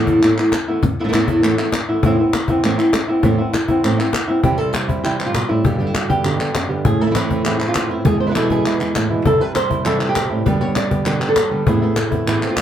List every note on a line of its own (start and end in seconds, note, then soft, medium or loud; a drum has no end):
0.00 0.20 E2 medium
0.00 0.21 A2 medium
0.00 0.21 E3 medium
0.00 0.22 A3 medium
0.00 0.22 B3 medium
0.00 0.22 E4 medium
0.07 cajon bass medium
0.22 0.37 E2 medium
0.22 0.37 A2 medium
0.22 0.37 E3 medium
0.22 0.37 A3 medium
0.22 0.37 B3 medium
0.22 0.36 E4 medium
0.22 cajon slap soft
0.22 clap medium
0.37 0.53 E3 soft
0.37 0.52 A3 soft
0.37 0.52 B3 soft
0.37 0.52 E4 soft
0.37 clap medium
0.52 muted nylon-string guitar stroke medium
0.52 cajon slap loud
0.52 clap medium
0.68 0.84 E3 soft
0.68 0.83 A3 soft
0.68 0.83 B3 medium
0.68 0.82 E4 medium
0.83 muted nylon-string guitar stroke medium
0.83 cajon bass loud
0.99 1.03 A2 soft
0.99 1.03 E3 medium
0.99 1.03 A3 medium
0.99 1.04 B3 medium
0.99 1.04 E4 medium
1.04 1.07 A2 medium
1.04 1.07 E3 medium
1.04 1.08 A3 medium
1.04 1.08 B3 medium
1.04 1.08 E4 medium
1.08 1.12 A2 medium
1.08 1.12 E3 medium
1.08 1.12 A3 medium
1.08 1.13 B3 medium
1.08 1.13 E4 medium
1.13 1.41 E2 medium
1.13 1.41 A2 medium
1.13 1.42 E3 loud
1.13 1.42 A3 medium
1.13 1.43 B3 medium
1.13 1.43 E4 loud
1.13 cajon slap medium
1.13 clap medium
1.28 cajon bass medium
1.42 1.57 E2 medium
1.42 1.57 A2 medium
1.42 1.58 E3 medium
1.42 1.58 A3 medium
1.42 1.58 B3 medium
1.42 1.57 E4 medium
1.42 clap medium
1.58 1.73 E3 soft
1.58 1.73 A3 medium
1.58 1.73 B3 soft
1.58 1.72 E4 medium
1.58 clap medium
1.72 muted nylon-string guitar stroke medium
1.72 cajon slap loud
1.72 clap medium
1.89 2.03 E3 soft
1.89 2.04 A3 medium
1.89 2.03 B3 medium
1.89 2.03 E4 medium
2.03 2.18 A2 medium
2.03 2.18 E3 medium
2.03 2.19 B3 medium
2.03 2.19 C4 medium
2.03 2.18 E4 medium
2.03 cajon bass loud
2.19 2.34 B3 medium
2.19 2.34 C4 soft
2.19 2.33 E4 soft
2.33 muted nylon-string guitar stroke medium
2.33 cajon slap loud
2.33 clap medium
2.48 2.64 B3 medium
2.48 2.64 C4 medium
2.48 2.63 E4 medium
2.48 cajon bass medium
2.63 2.78 A2 medium
2.63 2.78 E3 medium
2.63 2.78 B3 loud
2.63 2.79 C4 medium
2.63 2.77 E4 medium
2.63 cajon slap soft
2.63 clap medium
2.78 2.93 B3 medium
2.78 2.92 C4 soft
2.78 2.93 E4 medium
2.78 clap medium
2.93 muted nylon-string guitar stroke medium
2.93 cajon slap loud
2.93 clap medium
3.08 3.24 B3 medium
3.08 3.23 C4 soft
3.08 3.23 E4 medium
3.08 cajon slap soft
3.23 3.38 A2 medium
3.23 3.38 E3 medium
3.23 3.38 B3 medium
3.23 3.38 C4 medium
3.23 3.37 E4 medium
3.23 cajon bass loud
3.38 3.53 B3 soft
3.38 3.52 C4 soft
3.38 3.53 E4 medium
3.53 muted nylon-string guitar stroke medium
3.53 cajon slap loud
3.53 clap medium
3.68 3.84 B3 medium
3.68 3.83 C4 medium
3.68 3.83 E4 medium
3.68 cajon bass medium
3.83 3.98 A2 medium
3.83 3.98 E3 medium
3.83 3.98 B3 medium
3.83 3.99 C4 medium
3.83 3.97 E4 medium
3.83 clap medium
3.98 4.13 B3 soft
3.98 4.13 C4 soft
3.98 4.13 E4 medium
3.98 clap medium
4.13 muted nylon-string guitar stroke medium
4.13 cajon slap loud
4.13 clap medium
4.28 4.43 B3 soft
4.28 4.44 C4 soft
4.28 4.43 E4 medium
4.28 cajon slap soft
4.43 4.58 C3 medium
4.43 5.34 C3 medium
4.43 4.59 E3 medium
4.43 4.59 G3 medium
4.43 4.59 C4 medium
4.43 4.58 E4 medium
4.43 4.58 G4 medium
4.43 cajon bass loud
4.58 5.63 G3 medium
4.58 4.73 G3 soft
4.58 4.74 C4 soft
4.58 4.73 E4 soft
4.58 4.73 A4 medium
4.73 5.03 B4 medium
4.73 muted nylon-string guitar stroke medium
4.73 cajon slap loud
4.73 clap medium
4.88 5.04 G3 soft
4.88 5.04 C4 soft
4.88 5.03 E4 soft
4.88 cajon bass medium
5.04 5.18 C3 medium
5.04 5.19 E3 medium
5.04 5.19 G3 medium
5.04 5.19 C4 medium
5.04 5.18 E4 medium
5.04 5.49 G4 medium
5.04 cajon slap soft
5.04 clap medium
5.20 5.33 G3 soft
5.20 5.33 C4 soft
5.20 clap medium
5.26 5.49 F4 medium
5.34 5.49 B2 medium
5.34 muted nylon-string guitar stroke medium
5.34 cajon slap loud
5.34 clap medium
5.48 5.65 A2 medium
5.48 5.64 G3 soft
5.48 5.64 C4 soft
5.48 5.63 E4 soft
5.48 5.64 E4 medium
5.48 cajon slap soft
5.64 5.79 G2 medium
5.64 6.54 G2 medium
5.64 5.79 B2 medium
5.64 5.79 D3 medium
5.64 5.79 G3 medium
5.64 5.78 B3 medium
5.64 5.93 F#4 medium
5.64 5.77 G4 medium
5.64 cajon bass loud
5.78 6.85 D3 medium
5.78 5.93 D3 soft
5.78 5.93 G3 soft
5.78 5.93 B3 soft
5.78 5.93 G4 soft
5.78 5.87 G4 medium
5.78 cajon slap soft
5.87 6.09 E4 medium
5.94 6.24 F#4 medium
5.94 muted nylon-string guitar stroke medium
5.94 cajon slap medium
5.94 clap medium
6.09 6.24 D3 soft
6.09 6.24 G3 soft
6.09 6.24 B3 soft
6.09 6.24 G4 soft
6.09 6.85 G4 loud
6.09 cajon bass medium
6.24 6.39 G2 medium
6.24 6.39 B2 medium
6.24 6.39 D3 medium
6.24 6.39 G3 medium
6.24 6.38 B3 medium
6.24 6.83 D4 soft
6.24 6.37 G4 medium
6.24 clap medium
6.39 6.54 D3 soft
6.39 6.54 G3 soft
6.39 6.54 B3 soft
6.39 6.89 B3 soft
6.39 6.54 G4 soft
6.39 clap medium
6.55 6.70 F#2 medium
6.55 muted nylon-string guitar stroke medium
6.55 cajon slap loud
6.55 clap medium
6.69 6.85 G2 medium
6.69 6.85 D3 soft
6.69 6.85 G3 soft
6.69 6.84 B3 soft
6.69 6.84 G4 soft
6.69 cajon slap soft
6.85 8.06 A2 medium
6.85 7.01 G#4 loud
6.85 muted nylon-string guitar stroke medium
6.85 cajon bass loud
7.00 7.05 E3 soft
7.00 8.04 A3 medium
7.00 7.06 B3 soft
7.00 7.05 C4 soft
7.00 7.06 E4 medium
7.00 7.16 A4 medium
7.00 cajon slap soft
7.06 7.09 E3 medium
7.06 7.10 B3 medium
7.06 7.10 C4 medium
7.06 7.11 E4 medium
7.10 7.14 E3 medium
7.10 7.17 B3 medium
7.10 7.15 C4 medium
7.10 7.15 E4 medium
7.15 7.43 A2 medium
7.15 7.44 E3 medium
7.15 7.45 C4 medium
7.15 7.45 E4 medium
7.15 7.46 B4 medium
7.15 cajon slap loud
7.15 clap medium
7.31 7.60 C4 soft
7.31 cajon bass medium
7.44 7.59 A2 medium
7.44 7.60 E3 medium
7.44 7.60 B3 medium
7.44 7.60 C4 medium
7.44 7.58 E4 medium
7.44 7.91 G#4 medium
7.44 cajon slap soft
7.44 clap medium
7.60 7.74 B3 soft
7.60 7.75 C4 soft
7.60 7.74 C4 soft
7.60 7.74 E4 soft
7.60 clap medium
7.68 7.90 F4 medium
7.75 8.04 C4 soft
7.75 muted nylon-string guitar stroke medium
7.75 cajon slap loud
7.75 clap medium
7.90 8.05 B3 soft
7.90 8.05 C4 soft
7.90 8.04 E4 soft
7.90 8.06 E4 medium
7.90 cajon slap soft
8.05 9.26 E2 medium
8.05 8.20 G#3 medium
8.05 8.80 E4 medium
8.05 8.20 G#4 loud
8.05 muted nylon-string guitar stroke medium
8.05 cajon bass loud
8.20 9.24 G#3 medium
8.20 8.28 C5 medium
8.20 cajon slap soft
8.26 8.29 B2 soft
8.26 8.30 E3 soft
8.26 8.30 G#3 soft
8.26 8.30 B3 soft
8.26 8.30 E4 medium
8.26 8.36 B4 medium
8.30 8.34 B2 medium
8.30 8.34 E3 medium
8.30 8.35 G#3 medium
8.30 8.35 B3 medium
8.30 8.35 E4 medium
8.35 8.64 E2 medium
8.35 8.64 B2 medium
8.35 8.65 E3 medium
8.35 8.65 G#3 medium
8.35 8.65 B3 medium
8.35 8.65 E4 medium
8.35 8.51 A4 medium
8.35 cajon slap medium
8.35 clap medium
8.50 9.26 G#4 loud
8.50 cajon bass medium
8.65 8.80 E2 medium
8.65 8.80 B2 medium
8.65 8.80 E3 medium
8.65 8.80 G#3 medium
8.65 8.80 B3 medium
8.65 8.79 E4 medium
8.65 clap medium
8.80 8.95 E3 soft
8.80 8.95 G#3 soft
8.80 8.95 B3 soft
8.80 8.95 E4 soft
8.80 9.24 E4 soft
8.80 clap medium
8.95 9.11 A2 medium
8.95 muted nylon-string guitar stroke medium
8.95 cajon slap loud
8.95 clap medium
9.10 9.26 B2 medium
9.10 9.25 E3 soft
9.10 9.26 G#3 soft
9.10 9.25 B3 soft
9.10 9.25 E4 soft
9.10 cajon slap soft
9.25 9.40 C3 medium
9.25 10.44 C3 medium
9.25 9.40 E3 medium
9.25 9.41 G3 medium
9.25 9.40 C4 medium
9.25 9.39 E4 medium
9.25 9.41 A4 loud
9.25 cajon bass loud
9.40 10.44 G3 medium
9.40 9.55 G3 soft
9.40 9.55 C4 soft
9.40 9.55 E4 soft
9.40 9.55 B4 medium
9.55 9.86 C5 loud
9.55 muted nylon-string guitar stroke medium
9.55 cajon slap loud
9.55 clap medium
9.70 9.85 G3 soft
9.70 9.85 C4 soft
9.70 9.85 E4 soft
9.70 10.08 E4 soft
9.70 cajon bass medium
9.85 10.00 C3 medium
9.85 10.00 E3 medium
9.85 10.00 G3 medium
9.85 10.00 C4 medium
9.85 9.99 E4 medium
9.85 10.39 A4 medium
9.85 cajon slap soft
9.85 clap medium
10.00 10.15 C4 soft
10.00 10.45 C4 soft
10.00 10.15 E4 soft
10.00 clap medium
10.09 10.46 G4 loud
10.15 10.31 B2 medium
10.15 muted nylon-string guitar stroke soft
10.15 cajon slap loud
10.15 clap medium
10.30 10.46 A2 medium
10.30 10.45 G3 soft
10.30 10.46 C4 soft
10.30 10.45 E4 soft
10.45 10.60 G2 medium
10.45 10.60 B2 medium
10.45 10.61 D3 medium
10.45 11.50 G3 medium
10.45 10.61 G3 medium
10.45 10.60 B3 medium
10.45 10.62 B3 medium
10.45 11.66 D4 medium
10.45 10.59 G4 medium
10.45 11.28 G4 medium
10.45 10.61 B4 loud
10.45 cajon bass loud
10.61 10.76 D3 soft
10.61 10.76 G3 soft
10.61 10.76 B3 soft
10.61 11.36 B3 medium
10.61 10.75 G4 soft
10.61 10.76 C#5 loud
10.61 cajon slap soft
10.76 11.06 D5 loud
10.76 muted nylon-string guitar stroke medium
10.76 cajon slap medium
10.76 clap medium
10.91 11.05 D3 soft
10.91 11.05 G3 soft
10.91 11.06 B3 soft
10.91 11.05 G4 soft
10.91 cajon bass medium
11.05 11.20 G2 medium
11.05 11.21 B2 medium
11.05 11.21 D3 medium
11.05 11.21 G3 medium
11.05 11.20 B3 medium
11.05 11.19 G4 medium
11.05 11.59 B4 loud
11.05 cajon slap soft
11.05 clap medium
11.21 11.36 D3 soft
11.21 11.36 G3 soft
11.21 11.36 B3 soft
11.21 11.35 G4 soft
11.21 clap medium
11.29 11.66 A4 loud
11.36 11.51 F#3 medium
11.36 muted nylon-string guitar stroke medium
11.36 cajon slap loud
11.36 clap loud
11.51 11.66 D3 soft
11.51 11.66 G3 medium
11.51 11.66 G3 soft
11.51 11.66 B3 soft
11.51 11.66 G4 soft
11.51 cajon slap soft
11.66 11.81 A2 medium
11.66 12.62 A2 medium
11.66 11.81 E3 medium
11.66 11.82 B3 medium
11.66 11.81 C4 medium
11.66 11.80 E4 medium
11.66 12.12 G#4 loud
11.66 cajon bass loud
11.82 12.62 A3 medium
11.82 11.96 B3 soft
11.82 11.96 C4 soft
11.82 11.96 E4 soft
11.82 11.98 A4 medium
11.82 cajon slap soft
11.96 12.57 B4 loud
11.96 muted nylon-string guitar stroke medium
11.96 cajon slap loud
11.96 clap medium
12.11 12.27 B3 soft
12.11 12.27 C4 soft
12.11 12.26 E4 soft
12.11 cajon bass medium
12.27 12.41 A2 medium
12.27 12.41 E3 medium
12.27 12.42 B3 medium
12.27 12.42 C4 medium
12.27 12.40 E4 medium
12.27 12.50 G#4 loud
12.27 cajon slap soft
12.27 clap medium
12.42 12.57 B3 soft
12.42 12.62 C4 soft
12.42 12.56 C4 soft
12.42 12.56 E4 soft
12.42 clap medium
12.50 12.62 F4 medium
12.57 12.62 G#2 medium
12.57 muted nylon-string guitar stroke medium
12.57 cajon slap loud
12.57 clap medium